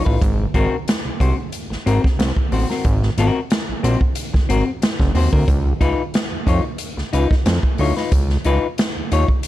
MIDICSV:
0, 0, Header, 1, 5, 480
1, 0, Start_track
1, 0, Tempo, 659341
1, 154, Time_signature, 4, 2, 24, 8
1, 6898, End_track
2, 0, Start_track
2, 0, Title_t, "Clean electric guitar"
2, 0, Program_c, 0, 27
2, 39, Note_on_c, 0, 71, 63
2, 46, Note_on_c, 0, 65, 60
2, 51, Note_on_c, 0, 63, 47
2, 147, Note_off_c, 0, 71, 0
2, 151, Note_off_c, 0, 65, 0
2, 153, Note_off_c, 0, 63, 0
2, 395, Note_on_c, 0, 60, 96
2, 400, Note_on_c, 0, 66, 106
2, 407, Note_on_c, 0, 70, 106
2, 545, Note_off_c, 0, 60, 0
2, 548, Note_off_c, 0, 66, 0
2, 551, Note_off_c, 0, 70, 0
2, 873, Note_on_c, 0, 60, 71
2, 878, Note_on_c, 0, 66, 77
2, 883, Note_on_c, 0, 72, 72
2, 994, Note_off_c, 0, 60, 0
2, 996, Note_off_c, 0, 66, 0
2, 999, Note_off_c, 0, 72, 0
2, 1356, Note_on_c, 0, 60, 91
2, 1360, Note_on_c, 0, 66, 81
2, 1367, Note_on_c, 0, 70, 100
2, 1478, Note_off_c, 0, 70, 0
2, 1487, Note_off_c, 0, 66, 0
2, 1505, Note_off_c, 0, 60, 0
2, 1837, Note_on_c, 0, 60, 70
2, 1843, Note_on_c, 0, 66, 64
2, 1848, Note_on_c, 0, 72, 78
2, 1955, Note_off_c, 0, 60, 0
2, 1958, Note_off_c, 0, 66, 0
2, 1960, Note_off_c, 0, 72, 0
2, 1964, Note_on_c, 0, 70, 55
2, 1972, Note_on_c, 0, 66, 52
2, 1976, Note_on_c, 0, 60, 50
2, 2068, Note_off_c, 0, 70, 0
2, 2072, Note_off_c, 0, 66, 0
2, 2074, Note_off_c, 0, 60, 0
2, 2316, Note_on_c, 0, 60, 96
2, 2319, Note_on_c, 0, 66, 100
2, 2327, Note_on_c, 0, 70, 90
2, 2464, Note_off_c, 0, 60, 0
2, 2466, Note_off_c, 0, 66, 0
2, 2470, Note_off_c, 0, 70, 0
2, 2790, Note_on_c, 0, 60, 84
2, 2795, Note_on_c, 0, 66, 76
2, 2801, Note_on_c, 0, 72, 81
2, 2911, Note_off_c, 0, 60, 0
2, 2913, Note_off_c, 0, 66, 0
2, 2916, Note_off_c, 0, 72, 0
2, 3269, Note_on_c, 0, 60, 92
2, 3276, Note_on_c, 0, 66, 90
2, 3282, Note_on_c, 0, 70, 85
2, 3388, Note_off_c, 0, 70, 0
2, 3397, Note_off_c, 0, 66, 0
2, 3421, Note_off_c, 0, 60, 0
2, 3747, Note_on_c, 0, 60, 70
2, 3755, Note_on_c, 0, 66, 73
2, 3760, Note_on_c, 0, 72, 75
2, 3869, Note_off_c, 0, 60, 0
2, 3874, Note_off_c, 0, 66, 0
2, 3874, Note_off_c, 0, 72, 0
2, 3877, Note_on_c, 0, 70, 60
2, 3884, Note_on_c, 0, 66, 56
2, 3889, Note_on_c, 0, 60, 49
2, 3985, Note_off_c, 0, 70, 0
2, 3988, Note_off_c, 0, 66, 0
2, 3990, Note_off_c, 0, 60, 0
2, 4226, Note_on_c, 0, 63, 102
2, 4233, Note_on_c, 0, 65, 105
2, 4237, Note_on_c, 0, 71, 104
2, 4380, Note_off_c, 0, 63, 0
2, 4383, Note_off_c, 0, 65, 0
2, 4385, Note_off_c, 0, 71, 0
2, 4706, Note_on_c, 0, 63, 81
2, 4714, Note_on_c, 0, 65, 86
2, 4720, Note_on_c, 0, 73, 79
2, 4829, Note_off_c, 0, 63, 0
2, 4831, Note_off_c, 0, 73, 0
2, 4833, Note_off_c, 0, 65, 0
2, 5188, Note_on_c, 0, 63, 90
2, 5194, Note_on_c, 0, 65, 101
2, 5200, Note_on_c, 0, 71, 92
2, 5307, Note_off_c, 0, 71, 0
2, 5314, Note_off_c, 0, 65, 0
2, 5341, Note_off_c, 0, 63, 0
2, 5671, Note_on_c, 0, 63, 71
2, 5678, Note_on_c, 0, 65, 74
2, 5683, Note_on_c, 0, 73, 75
2, 5792, Note_off_c, 0, 63, 0
2, 5796, Note_off_c, 0, 65, 0
2, 5796, Note_off_c, 0, 73, 0
2, 5799, Note_on_c, 0, 71, 63
2, 5804, Note_on_c, 0, 65, 56
2, 5811, Note_on_c, 0, 63, 55
2, 5906, Note_off_c, 0, 71, 0
2, 5909, Note_off_c, 0, 65, 0
2, 5912, Note_off_c, 0, 63, 0
2, 6154, Note_on_c, 0, 63, 98
2, 6159, Note_on_c, 0, 65, 98
2, 6163, Note_on_c, 0, 71, 106
2, 6304, Note_off_c, 0, 63, 0
2, 6307, Note_off_c, 0, 65, 0
2, 6309, Note_off_c, 0, 71, 0
2, 6637, Note_on_c, 0, 63, 70
2, 6643, Note_on_c, 0, 65, 72
2, 6648, Note_on_c, 0, 73, 86
2, 6756, Note_off_c, 0, 63, 0
2, 6759, Note_off_c, 0, 65, 0
2, 6761, Note_off_c, 0, 73, 0
2, 6898, End_track
3, 0, Start_track
3, 0, Title_t, "Analog synth bass"
3, 0, Program_c, 1, 38
3, 46, Note_on_c, 1, 33, 94
3, 131, Note_off_c, 1, 33, 0
3, 156, Note_on_c, 1, 32, 112
3, 340, Note_off_c, 1, 32, 0
3, 396, Note_on_c, 1, 32, 103
3, 493, Note_off_c, 1, 32, 0
3, 766, Note_on_c, 1, 36, 51
3, 809, Note_off_c, 1, 36, 0
3, 876, Note_on_c, 1, 36, 101
3, 973, Note_off_c, 1, 36, 0
3, 1243, Note_on_c, 1, 32, 54
3, 1287, Note_off_c, 1, 32, 0
3, 1358, Note_on_c, 1, 32, 90
3, 1453, Note_off_c, 1, 32, 0
3, 1594, Note_on_c, 1, 36, 94
3, 1691, Note_off_c, 1, 36, 0
3, 1835, Note_on_c, 1, 33, 91
3, 1932, Note_off_c, 1, 33, 0
3, 2075, Note_on_c, 1, 32, 98
3, 2259, Note_off_c, 1, 32, 0
3, 2313, Note_on_c, 1, 32, 92
3, 2410, Note_off_c, 1, 32, 0
3, 2683, Note_on_c, 1, 34, 48
3, 2727, Note_off_c, 1, 34, 0
3, 2792, Note_on_c, 1, 34, 93
3, 2889, Note_off_c, 1, 34, 0
3, 3161, Note_on_c, 1, 32, 52
3, 3205, Note_off_c, 1, 32, 0
3, 3274, Note_on_c, 1, 32, 85
3, 3371, Note_off_c, 1, 32, 0
3, 3639, Note_on_c, 1, 30, 104
3, 3726, Note_off_c, 1, 30, 0
3, 3748, Note_on_c, 1, 39, 89
3, 3847, Note_off_c, 1, 39, 0
3, 3880, Note_on_c, 1, 38, 95
3, 3966, Note_off_c, 1, 38, 0
3, 3987, Note_on_c, 1, 37, 108
3, 4174, Note_off_c, 1, 37, 0
3, 4228, Note_on_c, 1, 37, 91
3, 4327, Note_off_c, 1, 37, 0
3, 4599, Note_on_c, 1, 41, 52
3, 4644, Note_off_c, 1, 41, 0
3, 4709, Note_on_c, 1, 41, 96
3, 4808, Note_off_c, 1, 41, 0
3, 5076, Note_on_c, 1, 37, 54
3, 5122, Note_off_c, 1, 37, 0
3, 5193, Note_on_c, 1, 37, 89
3, 5291, Note_off_c, 1, 37, 0
3, 5429, Note_on_c, 1, 41, 91
3, 5528, Note_off_c, 1, 41, 0
3, 5670, Note_on_c, 1, 38, 88
3, 5769, Note_off_c, 1, 38, 0
3, 5910, Note_on_c, 1, 37, 106
3, 6097, Note_off_c, 1, 37, 0
3, 6154, Note_on_c, 1, 37, 101
3, 6251, Note_off_c, 1, 37, 0
3, 6526, Note_on_c, 1, 39, 51
3, 6570, Note_off_c, 1, 39, 0
3, 6638, Note_on_c, 1, 39, 96
3, 6734, Note_off_c, 1, 39, 0
3, 6898, End_track
4, 0, Start_track
4, 0, Title_t, "Muted clean electric guitar strokes"
4, 641, Note_on_c, 9, 29, 39
4, 714, Note_off_c, 9, 29, 0
4, 1004, Note_on_c, 9, 29, 42
4, 1077, Note_off_c, 9, 29, 0
4, 1240, Note_on_c, 9, 29, 52
4, 1313, Note_off_c, 9, 29, 0
4, 1487, Note_on_c, 9, 29, 44
4, 1559, Note_off_c, 9, 29, 0
4, 1600, Note_on_c, 9, 29, 53
4, 1673, Note_off_c, 9, 29, 0
4, 1727, Note_on_c, 9, 29, 54
4, 1800, Note_off_c, 9, 29, 0
4, 2555, Note_on_c, 9, 29, 45
4, 2628, Note_off_c, 9, 29, 0
4, 2920, Note_on_c, 9, 29, 48
4, 2993, Note_off_c, 9, 29, 0
4, 3157, Note_on_c, 9, 29, 50
4, 3229, Note_off_c, 9, 29, 0
4, 3397, Note_on_c, 9, 29, 40
4, 3470, Note_off_c, 9, 29, 0
4, 3509, Note_on_c, 9, 29, 49
4, 3582, Note_off_c, 9, 29, 0
4, 3640, Note_on_c, 9, 29, 54
4, 3713, Note_off_c, 9, 29, 0
4, 4469, Note_on_c, 9, 29, 47
4, 4542, Note_off_c, 9, 29, 0
4, 4834, Note_on_c, 9, 29, 47
4, 4907, Note_off_c, 9, 29, 0
4, 5076, Note_on_c, 9, 29, 56
4, 5149, Note_off_c, 9, 29, 0
4, 5316, Note_on_c, 9, 29, 44
4, 5389, Note_off_c, 9, 29, 0
4, 5428, Note_on_c, 9, 29, 34
4, 5501, Note_off_c, 9, 29, 0
4, 5555, Note_on_c, 9, 29, 51
4, 5628, Note_off_c, 9, 29, 0
4, 6396, Note_on_c, 9, 29, 47
4, 6469, Note_off_c, 9, 29, 0
4, 6766, Note_on_c, 9, 29, 39
4, 6839, Note_off_c, 9, 29, 0
4, 6898, End_track
5, 0, Start_track
5, 0, Title_t, "Drums"
5, 46, Note_on_c, 9, 36, 93
5, 119, Note_off_c, 9, 36, 0
5, 157, Note_on_c, 9, 36, 115
5, 159, Note_on_c, 9, 42, 111
5, 230, Note_off_c, 9, 36, 0
5, 232, Note_off_c, 9, 42, 0
5, 395, Note_on_c, 9, 36, 92
5, 396, Note_on_c, 9, 42, 71
5, 468, Note_off_c, 9, 36, 0
5, 469, Note_off_c, 9, 42, 0
5, 639, Note_on_c, 9, 42, 108
5, 648, Note_on_c, 9, 38, 123
5, 711, Note_off_c, 9, 42, 0
5, 721, Note_off_c, 9, 38, 0
5, 875, Note_on_c, 9, 36, 91
5, 881, Note_on_c, 9, 42, 86
5, 948, Note_off_c, 9, 36, 0
5, 953, Note_off_c, 9, 42, 0
5, 1110, Note_on_c, 9, 42, 97
5, 1182, Note_off_c, 9, 42, 0
5, 1252, Note_on_c, 9, 38, 32
5, 1325, Note_off_c, 9, 38, 0
5, 1359, Note_on_c, 9, 42, 70
5, 1432, Note_off_c, 9, 42, 0
5, 1488, Note_on_c, 9, 36, 104
5, 1496, Note_on_c, 9, 38, 37
5, 1560, Note_off_c, 9, 36, 0
5, 1568, Note_off_c, 9, 38, 0
5, 1598, Note_on_c, 9, 42, 96
5, 1606, Note_on_c, 9, 38, 127
5, 1671, Note_off_c, 9, 42, 0
5, 1679, Note_off_c, 9, 38, 0
5, 1722, Note_on_c, 9, 36, 100
5, 1795, Note_off_c, 9, 36, 0
5, 1833, Note_on_c, 9, 46, 78
5, 1906, Note_off_c, 9, 46, 0
5, 1967, Note_on_c, 9, 38, 38
5, 2040, Note_off_c, 9, 38, 0
5, 2072, Note_on_c, 9, 42, 105
5, 2074, Note_on_c, 9, 36, 116
5, 2145, Note_off_c, 9, 42, 0
5, 2147, Note_off_c, 9, 36, 0
5, 2203, Note_on_c, 9, 38, 32
5, 2275, Note_off_c, 9, 38, 0
5, 2312, Note_on_c, 9, 42, 84
5, 2385, Note_off_c, 9, 42, 0
5, 2551, Note_on_c, 9, 42, 92
5, 2560, Note_on_c, 9, 38, 119
5, 2624, Note_off_c, 9, 42, 0
5, 2633, Note_off_c, 9, 38, 0
5, 2796, Note_on_c, 9, 42, 84
5, 2869, Note_off_c, 9, 42, 0
5, 2918, Note_on_c, 9, 36, 81
5, 2991, Note_off_c, 9, 36, 0
5, 3024, Note_on_c, 9, 42, 112
5, 3096, Note_off_c, 9, 42, 0
5, 3161, Note_on_c, 9, 36, 84
5, 3164, Note_on_c, 9, 38, 29
5, 3234, Note_off_c, 9, 36, 0
5, 3237, Note_off_c, 9, 38, 0
5, 3273, Note_on_c, 9, 42, 77
5, 3346, Note_off_c, 9, 42, 0
5, 3510, Note_on_c, 9, 42, 93
5, 3519, Note_on_c, 9, 38, 122
5, 3583, Note_off_c, 9, 42, 0
5, 3592, Note_off_c, 9, 38, 0
5, 3637, Note_on_c, 9, 36, 94
5, 3639, Note_on_c, 9, 38, 38
5, 3710, Note_off_c, 9, 36, 0
5, 3712, Note_off_c, 9, 38, 0
5, 3747, Note_on_c, 9, 46, 77
5, 3820, Note_off_c, 9, 46, 0
5, 3878, Note_on_c, 9, 36, 108
5, 3951, Note_off_c, 9, 36, 0
5, 3989, Note_on_c, 9, 36, 122
5, 3990, Note_on_c, 9, 42, 108
5, 4062, Note_off_c, 9, 36, 0
5, 4063, Note_off_c, 9, 42, 0
5, 4228, Note_on_c, 9, 36, 84
5, 4229, Note_on_c, 9, 42, 77
5, 4301, Note_off_c, 9, 36, 0
5, 4302, Note_off_c, 9, 42, 0
5, 4469, Note_on_c, 9, 42, 92
5, 4478, Note_on_c, 9, 38, 112
5, 4541, Note_off_c, 9, 42, 0
5, 4551, Note_off_c, 9, 38, 0
5, 4708, Note_on_c, 9, 36, 95
5, 4714, Note_on_c, 9, 42, 89
5, 4781, Note_off_c, 9, 36, 0
5, 4786, Note_off_c, 9, 42, 0
5, 4939, Note_on_c, 9, 42, 113
5, 5011, Note_off_c, 9, 42, 0
5, 5081, Note_on_c, 9, 38, 33
5, 5154, Note_off_c, 9, 38, 0
5, 5192, Note_on_c, 9, 42, 76
5, 5264, Note_off_c, 9, 42, 0
5, 5320, Note_on_c, 9, 36, 95
5, 5325, Note_on_c, 9, 38, 33
5, 5393, Note_off_c, 9, 36, 0
5, 5398, Note_off_c, 9, 38, 0
5, 5429, Note_on_c, 9, 42, 89
5, 5437, Note_on_c, 9, 38, 127
5, 5502, Note_off_c, 9, 42, 0
5, 5510, Note_off_c, 9, 38, 0
5, 5556, Note_on_c, 9, 36, 89
5, 5629, Note_off_c, 9, 36, 0
5, 5665, Note_on_c, 9, 46, 73
5, 5737, Note_off_c, 9, 46, 0
5, 5801, Note_on_c, 9, 38, 36
5, 5873, Note_off_c, 9, 38, 0
5, 5910, Note_on_c, 9, 42, 109
5, 5911, Note_on_c, 9, 36, 119
5, 5983, Note_off_c, 9, 36, 0
5, 5983, Note_off_c, 9, 42, 0
5, 6039, Note_on_c, 9, 38, 35
5, 6112, Note_off_c, 9, 38, 0
5, 6147, Note_on_c, 9, 42, 85
5, 6220, Note_off_c, 9, 42, 0
5, 6391, Note_on_c, 9, 42, 104
5, 6401, Note_on_c, 9, 38, 127
5, 6464, Note_off_c, 9, 42, 0
5, 6474, Note_off_c, 9, 38, 0
5, 6636, Note_on_c, 9, 42, 79
5, 6709, Note_off_c, 9, 42, 0
5, 6759, Note_on_c, 9, 36, 77
5, 6832, Note_off_c, 9, 36, 0
5, 6866, Note_on_c, 9, 42, 109
5, 6898, Note_off_c, 9, 42, 0
5, 6898, End_track
0, 0, End_of_file